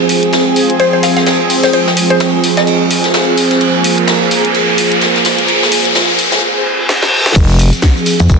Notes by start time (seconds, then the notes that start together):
Already playing: F3 C4 F4 G#4 C5 G#5, riser
0.09 open hi-hat, ride
0.23 closed hi-hat
0.33 snare, closed hi-hat, ride
0.47 ride
0.56 open hi-hat, ride
0.70 closed hi-hat
0.80 C5, closed hi-hat, ride
0.93 C5, ride
1.03 F5, snare, open hi-hat, ride
1.17 F5, snare, closed hi-hat
1.26 snare, closed hi-hat, ride
1.50 open hi-hat
1.63 C5, snare, closed hi-hat
1.73 C5, closed hi-hat, ride
1.87 snare
1.97 open hi-hat, ride
2.10 C5, closed hi-hat
2.20 snare, closed hi-hat, ride
2.34 ride
2.44 open hi-hat, ride
2.57 D#5, snare, closed hi-hat
2.67 closed hi-hat, ride
2.90 open hi-hat, ride
3.04 snare, closed hi-hat
3.13 snare, closed hi-hat, ride
3.37 open hi-hat, ride
3.51 snare, closed hi-hat
3.61 A#3, closed hi-hat, ride
3.84 open hi-hat, ride
3.98 closed hi-hat
4.07 snare, closed hi-hat, ride
4.22 ride
4.31 open hi-hat, ride
4.45 closed hi-hat
4.55 closed hi-hat, ride
4.68 ride
4.78 open hi-hat, ride
4.92 closed hi-hat, ride
5.01 snare, closed hi-hat, ride
5.15 snare
5.25 snare, open hi-hat, ride
5.38 closed hi-hat
5.48 closed hi-hat, ride
5.63 snare
5.72 open hi-hat, ride
5.85 closed hi-hat
5.95 snare, closed hi-hat, ride
6.09 ride
6.19 open hi-hat, ride
6.32 snare, closed hi-hat
6.42 reverse cymbal
6.89 snare
7.03 snare
7.26 snare
7.36 F1 F3 C4 G#4, kick, closed hi-hat, crash, ride, shekere
7.50 shekere
7.59 open hi-hat, ride, shekere
7.73 closed hi-hat, shekere
7.82 kick, snare, closed hi-hat, shekere
7.96 ride, shekere
8.06 open hi-hat, ride, shekere
8.20 F2, closed hi-hat, shekere
8.29 F1, kick, closed hi-hat, ride, shekere